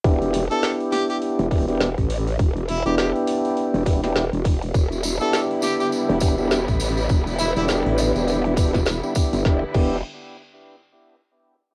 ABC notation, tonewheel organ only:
X:1
M:4/4
L:1/16
Q:"Swing 16ths" 1/4=102
K:Em
V:1 name="Tonewheel organ"
[B,DEG]3 [B,DEG]6- [B,DEG] [B,DEG] [B,DEG]2 z3 | z3 [B,DEG]6- [B,DEG] [B,DEG] [B,DEG]2 z3 | z3 [B,DEG]6- [B,DEG] [B,DEG] [B,DEG]2 z3 | z3 [B,DEG]6- [B,DEG] [B,DEG]2 z [B,DEG] [B,DEG]2 |
[B,DEG] z [B,DEG]2 z12 |]